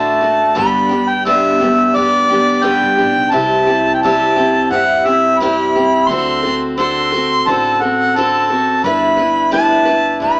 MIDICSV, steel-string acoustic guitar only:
0, 0, Header, 1, 2, 480
1, 0, Start_track
1, 0, Tempo, 688863
1, 396, Time_signature, 4, 2, 24, 8
1, 7246, End_track
2, 0, Start_track
2, 0, Title_t, "Steel-string acoustic guitar"
2, 0, Program_c, 0, 25
2, 0, Note_on_c, 0, 50, 63
2, 0, Note_on_c, 0, 57, 67
2, 0, Note_on_c, 0, 62, 63
2, 0, Note_on_c, 0, 66, 69
2, 138, Note_off_c, 0, 66, 0
2, 146, Note_on_c, 0, 66, 47
2, 150, Note_off_c, 0, 62, 0
2, 154, Note_off_c, 0, 50, 0
2, 157, Note_off_c, 0, 57, 0
2, 158, Note_on_c, 0, 62, 40
2, 168, Note_on_c, 0, 57, 37
2, 384, Note_on_c, 0, 43, 65
2, 386, Note_off_c, 0, 62, 0
2, 388, Note_on_c, 0, 50, 66
2, 391, Note_off_c, 0, 66, 0
2, 393, Note_on_c, 0, 55, 62
2, 394, Note_on_c, 0, 62, 57
2, 396, Note_off_c, 0, 57, 0
2, 398, Note_on_c, 0, 59, 59
2, 404, Note_on_c, 0, 67, 62
2, 613, Note_off_c, 0, 67, 0
2, 621, Note_on_c, 0, 67, 44
2, 627, Note_off_c, 0, 62, 0
2, 630, Note_off_c, 0, 43, 0
2, 632, Note_off_c, 0, 50, 0
2, 634, Note_off_c, 0, 55, 0
2, 635, Note_off_c, 0, 59, 0
2, 636, Note_on_c, 0, 62, 42
2, 643, Note_on_c, 0, 59, 37
2, 648, Note_on_c, 0, 55, 38
2, 868, Note_off_c, 0, 67, 0
2, 872, Note_off_c, 0, 55, 0
2, 873, Note_on_c, 0, 43, 55
2, 874, Note_off_c, 0, 59, 0
2, 876, Note_off_c, 0, 62, 0
2, 880, Note_on_c, 0, 50, 62
2, 881, Note_on_c, 0, 55, 67
2, 883, Note_on_c, 0, 59, 62
2, 883, Note_on_c, 0, 62, 70
2, 887, Note_on_c, 0, 67, 71
2, 1106, Note_off_c, 0, 67, 0
2, 1114, Note_off_c, 0, 43, 0
2, 1115, Note_on_c, 0, 67, 45
2, 1116, Note_off_c, 0, 62, 0
2, 1118, Note_off_c, 0, 50, 0
2, 1118, Note_off_c, 0, 55, 0
2, 1119, Note_off_c, 0, 59, 0
2, 1124, Note_on_c, 0, 62, 40
2, 1131, Note_on_c, 0, 59, 36
2, 1138, Note_on_c, 0, 55, 34
2, 1344, Note_off_c, 0, 55, 0
2, 1353, Note_off_c, 0, 59, 0
2, 1353, Note_on_c, 0, 55, 48
2, 1355, Note_off_c, 0, 67, 0
2, 1360, Note_off_c, 0, 62, 0
2, 1361, Note_on_c, 0, 59, 51
2, 1368, Note_on_c, 0, 62, 52
2, 1379, Note_on_c, 0, 67, 56
2, 1585, Note_off_c, 0, 67, 0
2, 1594, Note_off_c, 0, 55, 0
2, 1594, Note_on_c, 0, 67, 40
2, 1597, Note_off_c, 0, 62, 0
2, 1598, Note_off_c, 0, 59, 0
2, 1605, Note_on_c, 0, 62, 41
2, 1616, Note_on_c, 0, 59, 36
2, 1620, Note_on_c, 0, 55, 34
2, 1822, Note_off_c, 0, 55, 0
2, 1827, Note_on_c, 0, 43, 61
2, 1828, Note_off_c, 0, 59, 0
2, 1828, Note_on_c, 0, 50, 53
2, 1831, Note_on_c, 0, 55, 63
2, 1833, Note_off_c, 0, 62, 0
2, 1834, Note_off_c, 0, 67, 0
2, 1837, Note_on_c, 0, 59, 60
2, 1841, Note_on_c, 0, 62, 62
2, 1844, Note_on_c, 0, 67, 62
2, 2061, Note_off_c, 0, 67, 0
2, 2069, Note_on_c, 0, 67, 38
2, 2070, Note_off_c, 0, 62, 0
2, 2071, Note_off_c, 0, 43, 0
2, 2072, Note_off_c, 0, 50, 0
2, 2073, Note_off_c, 0, 55, 0
2, 2076, Note_off_c, 0, 59, 0
2, 2078, Note_on_c, 0, 62, 39
2, 2086, Note_on_c, 0, 59, 35
2, 2096, Note_on_c, 0, 55, 29
2, 2307, Note_off_c, 0, 55, 0
2, 2310, Note_on_c, 0, 48, 57
2, 2312, Note_off_c, 0, 67, 0
2, 2313, Note_off_c, 0, 59, 0
2, 2315, Note_on_c, 0, 55, 60
2, 2316, Note_on_c, 0, 60, 54
2, 2317, Note_off_c, 0, 62, 0
2, 2320, Note_on_c, 0, 64, 61
2, 2326, Note_on_c, 0, 67, 70
2, 2548, Note_off_c, 0, 67, 0
2, 2553, Note_off_c, 0, 48, 0
2, 2555, Note_off_c, 0, 55, 0
2, 2555, Note_off_c, 0, 60, 0
2, 2556, Note_on_c, 0, 67, 44
2, 2558, Note_off_c, 0, 64, 0
2, 2571, Note_on_c, 0, 64, 36
2, 2578, Note_on_c, 0, 60, 32
2, 2795, Note_off_c, 0, 67, 0
2, 2803, Note_off_c, 0, 64, 0
2, 2806, Note_off_c, 0, 60, 0
2, 2808, Note_on_c, 0, 48, 58
2, 2816, Note_on_c, 0, 55, 64
2, 2817, Note_on_c, 0, 60, 61
2, 2823, Note_on_c, 0, 64, 72
2, 2824, Note_on_c, 0, 67, 66
2, 3030, Note_off_c, 0, 67, 0
2, 3038, Note_on_c, 0, 67, 39
2, 3040, Note_off_c, 0, 64, 0
2, 3042, Note_off_c, 0, 48, 0
2, 3045, Note_off_c, 0, 55, 0
2, 3046, Note_off_c, 0, 60, 0
2, 3049, Note_on_c, 0, 64, 37
2, 3060, Note_on_c, 0, 60, 35
2, 3277, Note_off_c, 0, 67, 0
2, 3278, Note_on_c, 0, 55, 49
2, 3280, Note_off_c, 0, 60, 0
2, 3282, Note_off_c, 0, 64, 0
2, 3288, Note_on_c, 0, 60, 52
2, 3296, Note_on_c, 0, 64, 55
2, 3302, Note_on_c, 0, 67, 50
2, 3514, Note_off_c, 0, 67, 0
2, 3516, Note_off_c, 0, 55, 0
2, 3521, Note_off_c, 0, 60, 0
2, 3523, Note_on_c, 0, 67, 43
2, 3525, Note_off_c, 0, 64, 0
2, 3532, Note_on_c, 0, 64, 39
2, 3543, Note_on_c, 0, 60, 36
2, 3759, Note_off_c, 0, 67, 0
2, 3763, Note_off_c, 0, 64, 0
2, 3767, Note_on_c, 0, 48, 62
2, 3769, Note_off_c, 0, 60, 0
2, 3772, Note_on_c, 0, 55, 56
2, 3778, Note_on_c, 0, 60, 67
2, 3779, Note_on_c, 0, 64, 72
2, 3783, Note_on_c, 0, 67, 70
2, 4001, Note_off_c, 0, 48, 0
2, 4002, Note_off_c, 0, 67, 0
2, 4003, Note_off_c, 0, 55, 0
2, 4006, Note_off_c, 0, 60, 0
2, 4007, Note_off_c, 0, 64, 0
2, 4010, Note_on_c, 0, 67, 42
2, 4024, Note_on_c, 0, 64, 37
2, 4032, Note_on_c, 0, 60, 34
2, 4242, Note_off_c, 0, 67, 0
2, 4244, Note_on_c, 0, 50, 57
2, 4246, Note_off_c, 0, 60, 0
2, 4249, Note_off_c, 0, 64, 0
2, 4254, Note_on_c, 0, 60, 60
2, 4258, Note_on_c, 0, 66, 61
2, 4262, Note_on_c, 0, 69, 69
2, 4468, Note_off_c, 0, 69, 0
2, 4476, Note_on_c, 0, 69, 45
2, 4479, Note_off_c, 0, 50, 0
2, 4484, Note_off_c, 0, 60, 0
2, 4484, Note_off_c, 0, 66, 0
2, 4492, Note_on_c, 0, 66, 39
2, 4503, Note_on_c, 0, 60, 35
2, 4711, Note_off_c, 0, 60, 0
2, 4715, Note_off_c, 0, 69, 0
2, 4720, Note_off_c, 0, 66, 0
2, 4720, Note_on_c, 0, 50, 64
2, 4720, Note_on_c, 0, 60, 62
2, 4728, Note_on_c, 0, 66, 69
2, 4735, Note_on_c, 0, 69, 72
2, 4952, Note_off_c, 0, 69, 0
2, 4957, Note_off_c, 0, 50, 0
2, 4957, Note_off_c, 0, 60, 0
2, 4960, Note_on_c, 0, 69, 44
2, 4961, Note_off_c, 0, 66, 0
2, 4979, Note_on_c, 0, 66, 42
2, 4992, Note_on_c, 0, 60, 37
2, 5197, Note_off_c, 0, 69, 0
2, 5205, Note_on_c, 0, 50, 49
2, 5207, Note_off_c, 0, 66, 0
2, 5208, Note_off_c, 0, 60, 0
2, 5216, Note_on_c, 0, 60, 55
2, 5225, Note_on_c, 0, 66, 56
2, 5229, Note_on_c, 0, 69, 56
2, 5435, Note_off_c, 0, 69, 0
2, 5440, Note_off_c, 0, 50, 0
2, 5443, Note_on_c, 0, 69, 44
2, 5445, Note_off_c, 0, 60, 0
2, 5446, Note_off_c, 0, 66, 0
2, 5454, Note_on_c, 0, 66, 39
2, 5469, Note_on_c, 0, 60, 36
2, 5679, Note_off_c, 0, 69, 0
2, 5684, Note_off_c, 0, 66, 0
2, 5687, Note_off_c, 0, 60, 0
2, 5687, Note_on_c, 0, 50, 60
2, 5695, Note_on_c, 0, 60, 62
2, 5701, Note_on_c, 0, 66, 66
2, 5703, Note_on_c, 0, 69, 69
2, 5913, Note_off_c, 0, 69, 0
2, 5921, Note_off_c, 0, 50, 0
2, 5921, Note_on_c, 0, 69, 43
2, 5925, Note_off_c, 0, 60, 0
2, 5928, Note_off_c, 0, 66, 0
2, 5936, Note_on_c, 0, 66, 38
2, 5944, Note_on_c, 0, 60, 33
2, 6158, Note_off_c, 0, 69, 0
2, 6160, Note_on_c, 0, 55, 59
2, 6161, Note_off_c, 0, 60, 0
2, 6164, Note_on_c, 0, 62, 62
2, 6165, Note_off_c, 0, 66, 0
2, 6171, Note_on_c, 0, 64, 65
2, 6172, Note_on_c, 0, 71, 61
2, 6379, Note_off_c, 0, 71, 0
2, 6387, Note_on_c, 0, 71, 44
2, 6396, Note_off_c, 0, 64, 0
2, 6397, Note_off_c, 0, 55, 0
2, 6399, Note_off_c, 0, 62, 0
2, 6405, Note_on_c, 0, 64, 41
2, 6414, Note_on_c, 0, 62, 38
2, 6624, Note_off_c, 0, 62, 0
2, 6628, Note_on_c, 0, 55, 62
2, 6630, Note_off_c, 0, 64, 0
2, 6631, Note_off_c, 0, 71, 0
2, 6632, Note_on_c, 0, 62, 69
2, 6638, Note_on_c, 0, 64, 69
2, 6644, Note_on_c, 0, 71, 73
2, 6857, Note_off_c, 0, 71, 0
2, 6865, Note_on_c, 0, 71, 49
2, 6871, Note_off_c, 0, 55, 0
2, 6872, Note_off_c, 0, 64, 0
2, 6873, Note_off_c, 0, 62, 0
2, 6881, Note_on_c, 0, 64, 41
2, 6889, Note_on_c, 0, 62, 38
2, 7106, Note_on_c, 0, 55, 50
2, 7109, Note_off_c, 0, 62, 0
2, 7110, Note_off_c, 0, 71, 0
2, 7114, Note_off_c, 0, 64, 0
2, 7118, Note_on_c, 0, 62, 54
2, 7122, Note_on_c, 0, 64, 53
2, 7133, Note_on_c, 0, 71, 55
2, 7246, Note_off_c, 0, 55, 0
2, 7246, Note_off_c, 0, 62, 0
2, 7246, Note_off_c, 0, 64, 0
2, 7246, Note_off_c, 0, 71, 0
2, 7246, End_track
0, 0, End_of_file